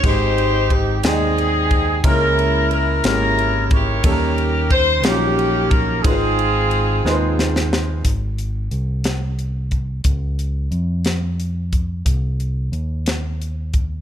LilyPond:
<<
  \new Staff \with { instrumentName = "Horn section" } { \time 6/8 \key aes \major \tempo 4. = 60 << { c''4 g'8 aes'4. | bes'4 bes'8 bes'4 des''8~ | des''8 r8 c''8 g'4 bes'8 | aes'2~ aes'8 r8 |
r2. | r2. | r2. | } \\ { <ees' g'>4. <c' ees'>4. | fes'4. fes'4 <g' bes'>8~ | <g' bes'>4 r8 <bes des'>4. | <c' f'>2~ <c' f'>8 r8 |
r2. | r2. | r2. | } >> }
  \new Staff \with { instrumentName = "Grand piano" } { \time 6/8 \key aes \major <aes, aes c' ees' g' c''>4. <aes c' ees' d'' ees'' g''>4. | <des aes bes des' fes' bes'>4. <aes bes des' fes' g' aes'>4. | <ees g bes des' ees' a' bes'>4. <ges g bes des' ees' f'>4. | <aes, aes c' ees' f' ces'' c''>4. <aes c' ees' f' ces'' c''>4. |
r2. | r2. | r2. | }
  \new Staff \with { instrumentName = "Fingered electric bass" } { \clef bass \time 6/8 \key aes \major aes,,4. ees,4. | des,4. aes,,4. | ees,4. bes,,4. | aes,,4. ees,4. |
aes,,4 c,2 | des,4 f,2 | c,4 ees,2 | }
  \new DrumStaff \with { instrumentName = "Drums" } \drummode { \time 6/8 <cymc bd>8 cymr8 <bd cymr>8 <cymr sn>8 cymr8 <bd cymr>8 | <bd cymr>8 cymr8 cymr8 <cymr sn>8 cymr8 <bd cymr>8 | <bd cymr>8 cymr8 <bd cymr>8 <cymr sn>8 cymr8 <bd cymr>8 | <bd cymr>8 cymr8 cymr8 sn8 sn16 sn16 sn8 |
<hh bd>8 hh8 hh8 <hh sn>8 hh8 <hh bd>8 | <hh bd>8 hh8 hh8 <hh sn>8 hh8 <hh bd>8 | <hh bd>8 hh8 hh8 <hh sn>8 hh8 <hh bd>8 | }
>>